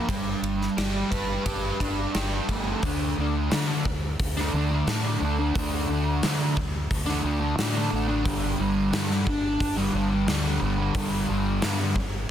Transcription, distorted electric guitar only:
Already playing: D4
0.09 G3
0.77 G4
1.11 B4
1.46 G4
1.80 D4
2.15 G4
2.50 A3
2.82 D3 A3 D4
3.17 D3 A3 D4
3.51 D3 A3 D4
3.67 A3 D4
3.86 muted distorted electric guitar stroke
4.37 A3 D4
4.53 D3 A3 D4
4.71 A3 D4
4.88 D3 A3 D4
5.04 A3 D4
5.21 D3 A3 D4
5.39 A3 D4
5.55 D3 A3 D4
5.89 D3 A3 D4
6.23 D3 A3 D4
6.39 A3 D4
6.58 muted distorted electric guitar stroke
7.06 A3 D4
7.23 D3 A3 D4
7.40 A3 D4
7.56 D3 A3 D4
7.74 A3 D4
7.91 D3 A3 D4
8.07 A3 D4
8.24 G2 D3 G3
8.58 G2 D3 G3
8.91 G2 D3 G3
9.09 D3 G3
9.27 muted distorted electric guitar stroke
9.77 D3 G3
9.93 G2 D3 G3
10.10 D3 G3
10.27 G2 D3 G3
10.44 D3 G3
10.61 G2 D3 G3
10.78 D3 G3
10.95 G2 D3 G3
11.28 G2 D3 G3
11.62 G2 D3 G3
11.79 D3 G3
11.96 muted distorted electric guitar stroke

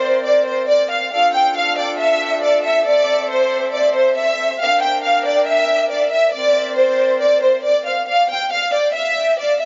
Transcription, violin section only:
Already playing: C5
0.26 D5
0.47 C5
0.68 D5
0.90 F5
1.12 F5
1.34 G5
1.56 F5
1.78 D5
1.99 E5
2.43 D5
2.64 E5
2.86 D5
3.30 C5
3.73 D5
3.95 C5
4.17 E5
4.60 F5
4.82 G5
5.04 F5
5.26 D5
5.47 E5
5.90 D5
6.12 E5
6.34 D5
6.77 C5
7.21 D5
7.42 C5
7.64 D5
7.86 F5
8.08 F5
8.30 G5
8.52 F5
8.73 D5
8.95 E5
9.39 D5
9.60 E5

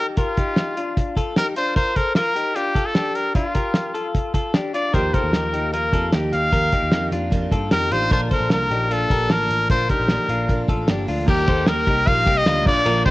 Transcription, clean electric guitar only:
Already playing: D#4 G4
0.18 G4 A#4
0.37 D#4 G4
0.77 D4 F4
1.17 F4 A4
1.37 D#4 G4
1.56 D4 F4
1.76 F4 A#4
1.96 A4 C5
2.16 F4 A#4
2.35 D#4 G4
2.56 D4 F4
2.76 F4 A4
2.95 D4 G4
3.35 D4 F4
3.55 G4 A#4
3.95 F4 A4
4.34 F4 A4
4.54 D4 G4
4.74 D4 F4
4.94 G4 A#4
5.14 A4 C5
5.34 G4 A#4
5.54 D#4 G4
5.74 A#3 F4
5.93 F4 A4
6.13 D#4 G4
6.53 G4 A#4
6.72 D#4 G4
7.13 D4 F4
7.52 F4 A4
7.72 D#4 G4
7.92 D4 F4
8.11 F4 A#4
8.31 A4 C5
8.51 F4 A#4
8.71 D#4 G4
8.91 D4 F4
9.11 G4 A#4
9.30 F4 A5
9.70 F4 A#4
9.90 D#4 G4
10.30 D4 F4
10.69 F4 A4
10.89 D4 G4
11.08 D4 F4
11.28 G4 A#4
11.48 A4 C5
11.68 G4 A#4
11.87 D#4 G4
12.07 A#3 F4
12.26 D#4 G4
12.46 D4 F4
12.86 F4 A#4
13.06 D#4 G4

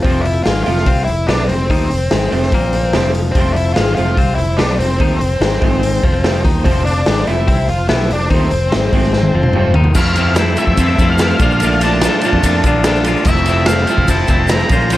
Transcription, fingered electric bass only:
0.05 F1
0.46 G#1
0.67 F1
0.87 C2
1.08 F1
1.28 B1
1.49 F1
1.70 D#2
1.92 F1
2.13 G#1
2.33 F1
2.52 A#1
2.95 F1
3.35 F1
3.78 G#1
3.99 F1
4.17 C2
4.40 F1
4.60 B1
4.79 F1
5.00 D#2
5.20 F1
5.40 G#1
5.62 G#1
6.04 F1
6.45 D#2
6.66 F1
7.08 G#1
7.28 F1
7.48 C2
7.69 F1
7.90 B1
8.12 F1
8.30 D#2
8.53 F1
8.74 G#1
8.93 G#1
9.35 F1
9.75 D#2
9.95 F2
10.68 F2
10.78 F2
10.99 F2
11.39 A#1
12.34 F2
12.44 F2
12.64 A#1
13.26 F1
13.98 F1
14.09 F1
14.28 F1
14.70 A#1

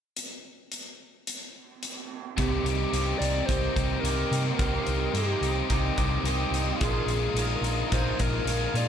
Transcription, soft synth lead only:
2.38 G4
2.77 G4
3.18 D5
3.45 C5
4.00 A#4
4.56 A#4
5.12 G4
6.80 G#4
7.92 C5
8.21 A#4
8.76 D5

